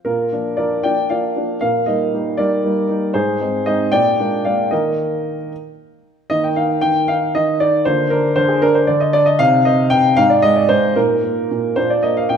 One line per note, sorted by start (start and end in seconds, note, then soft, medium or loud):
0.05 0.31 A#2 soft
0.05 0.55 F4 soft
0.05 0.56 A#4 medium
0.32 0.56 F3 soft
0.32 0.56 A#3 soft
0.32 0.56 D4 soft
0.57 0.82 F3 soft
0.57 0.82 A#3 soft
0.57 0.82 D4 soft
0.57 0.82 A#4 medium
0.57 0.83 D5 medium
0.83 1.08 F3 soft
0.83 1.08 A#3 soft
0.83 1.08 D4 soft
0.83 1.09 D5 medium
0.83 1.10 G5 medium
1.10 1.33 F3 soft
1.10 1.34 A#3 soft
1.10 1.34 D4 soft
1.10 1.58 D5 soft
1.10 1.59 F5 medium
1.36 1.59 F3 soft
1.36 1.60 A#3 soft
1.36 1.60 D4 soft
1.61 1.87 A#2 soft
1.61 1.86 A#4 medium
1.61 1.87 F5 medium
1.86 2.10 G3 soft
1.86 2.10 A#3 soft
1.86 2.11 D#4 soft
1.86 2.35 A#4 soft
1.86 2.38 D#5 medium
2.13 2.36 G3 soft
2.13 2.36 A#3 soft
2.13 2.37 D#4 soft
2.37 2.61 G3 soft
2.37 2.61 A#3 soft
2.37 2.61 D#4 soft
2.37 3.11 A#4 medium
2.37 3.14 D5 medium
2.64 2.87 G3 soft
2.64 2.87 A#3 soft
2.64 2.87 D#4 soft
2.89 3.12 G3 soft
2.89 3.12 A#3 soft
2.89 3.12 D#4 soft
3.14 3.39 G#2 medium
3.14 3.62 G#4 medium
3.14 3.65 C5 medium
3.41 3.64 G#3 soft
3.41 3.64 C4 soft
3.41 3.64 D#4 soft
3.66 3.90 G#3 soft
3.66 3.90 C4 soft
3.66 3.90 D#4 soft
3.66 3.91 C5 medium
3.66 3.92 D#5 medium
3.92 4.18 A#2 medium
3.92 4.41 D5 medium
3.92 4.44 G5 medium
4.19 4.43 G#3 soft
4.19 4.43 A#3 soft
4.19 4.43 D4 soft
4.45 4.69 G#3 soft
4.45 4.69 A#3 soft
4.45 4.69 D4 soft
4.45 4.70 D5 medium
4.45 4.71 F5 medium
4.71 5.27 D#3 soft
4.71 5.35 A#3 soft
4.71 5.35 D#4 soft
4.71 5.47 A#4 medium
4.71 5.50 D#5 medium
6.30 6.81 D#3 soft
6.30 7.82 A#3 soft
6.30 6.55 D#4 soft
6.30 6.43 D#5 medium
6.44 6.57 G5 medium
6.56 7.08 D#4 soft
6.56 6.83 F5 medium
6.81 7.34 D#3 soft
6.81 7.08 G5 medium
7.08 7.59 D#4 soft
7.08 7.34 F5 medium
7.35 7.85 D#3 soft
7.35 7.60 D#5 medium
7.60 7.85 D#4 soft
7.60 7.86 D5 medium
7.85 8.35 D3 medium
7.85 9.35 A#3 soft
7.85 9.35 F4 soft
7.85 8.11 C5 medium
8.10 8.61 D4 soft
8.10 8.36 A#4 medium
8.36 8.87 D3 medium
8.36 8.49 C5 medium
8.48 8.62 G#4 medium
8.62 9.13 D4 medium
8.62 8.75 A#4 medium
8.75 8.88 C5 medium
8.87 9.38 D3 medium
8.87 9.00 D5 medium
9.00 9.13 D#5 medium
9.13 9.39 D4 medium
9.13 9.26 D5 medium
9.26 9.39 D#5 medium
9.39 9.89 C3 medium
9.39 9.64 C4 soft
9.39 10.13 D#4 soft
9.39 9.65 F5 loud
9.65 10.16 C4 medium
9.65 9.91 D#5 medium
9.90 10.16 C3 medium
9.90 10.17 G5 loud
10.17 10.69 G#2 medium
10.17 10.93 D#4 soft
10.17 10.30 F5 loud
10.30 10.43 D5 medium
10.42 10.95 G#3 medium
10.42 10.56 D#5 loud
10.56 10.69 D5 medium
10.69 10.96 G#2 medium
10.69 10.96 C5 medium
10.96 11.49 A#2 medium
10.96 11.22 A#3 soft
10.96 11.73 D#4 soft
10.96 11.77 A#4 medium
11.24 11.75 A#3 soft
11.51 11.75 A#2 soft
11.76 12.29 A#2 medium
11.76 12.02 A#3 soft
11.76 12.37 D4 soft
11.76 11.90 C5 medium
11.90 12.04 D5 medium
12.03 12.37 A#3 soft
12.03 12.17 D#5 medium
12.17 12.30 F5 medium
12.29 12.37 A#2 soft
12.29 12.37 G5 medium